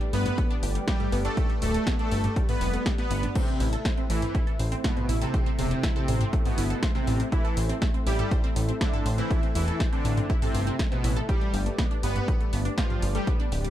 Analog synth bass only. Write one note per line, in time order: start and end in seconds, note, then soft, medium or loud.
0.13 0.29 G1 medium
0.63 0.78 G1 medium
1.12 1.28 G1 medium
1.62 1.78 D1 medium
2.12 2.27 G1 medium
2.61 2.77 F1 medium
3.11 3.26 G1 loud
3.60 3.76 A1 loud
4.10 4.26 A1 medium
4.59 4.75 A1 medium
5.09 5.25 A1 medium
5.59 5.74 E1 medium
6.08 6.24 A1 medium
6.58 6.74 G1 medium
7.07 7.23 A1 loud
7.57 7.73 A1 loud
8.06 8.22 A1 medium
8.56 8.72 A1 loud
9.06 9.21 A1 medium
9.55 9.71 E1 medium
10.05 10.21 A1 medium
10.54 10.70 G1 medium
11.04 11.20 A1 loud
11.54 11.69 G1 loud
12.03 12.19 G1 medium
12.53 12.69 G1 loud
13.02 13.18 G1 medium
13.52 13.68 D1 medium